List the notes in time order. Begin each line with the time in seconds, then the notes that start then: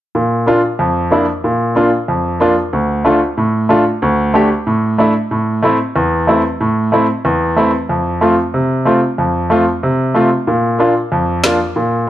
0.15 A#2
0.46 A#3 D4 F4
0.79 F2
1.11 A#3 D4 E4
1.44 A#2
1.75 A#3 D4 F4
2.08 F2
2.40 A#3 D4 F4
2.73 D2
3.05 A3 D4 F4
3.38 A2
3.69 A3 D4 F4
4.02 D2
4.34 A3 D4 G4
4.67 A2
4.98 A3 D4 E4
5.31 A2
5.63 A3 C4 E4
5.96 E2
6.27 A3 C4 E4
6.61 A2
6.92 A3 C4 E4
7.25 E2
7.56 A3 C4 E4
7.89 F2
8.21 A3 C4 F4
8.54 C3
8.85 A3 C4 F4
9.18 F2
9.50 A3 C4 F4
9.83 C3
10.14 A3 C4 F4
10.47 A#2
10.79 A#3 D4 F4
11.12 F2
11.43 A#3 D4 F4, finger snap, snare
11.76 A#2